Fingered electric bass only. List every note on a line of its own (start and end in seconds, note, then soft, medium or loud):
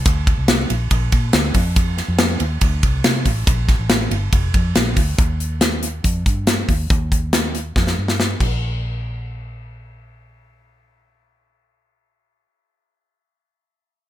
0.06 0.33 D2 medium
0.38 0.65 C2 medium
0.70 0.88 A#1 medium
0.91 1.09 A#1 loud
1.12 1.31 A#2 medium
1.34 1.52 D2 loud
1.55 2.00 F2 loud
2.08 2.36 F2 medium
2.40 2.59 D#2 medium
2.61 2.80 D2 loud
2.83 3.01 C2 medium
3.04 3.23 C3 medium
3.25 3.44 A1 loud
3.47 3.74 A#1 medium
3.79 4.07 A1 medium
4.11 4.29 G1 medium
4.33 4.51 F1 loud
4.54 4.72 F2 loud
4.75 4.94 A#1 loud
4.97 5.15 D2 medium
5.18 6.00 D#2 medium
6.04 6.22 F2 medium
6.26 6.62 G2 medium
6.69 6.87 D#2 loud
6.90 7.72 D#2 medium
7.76 7.94 F2 loud
7.98 8.34 G2 medium
8.40 12.45 A#1 medium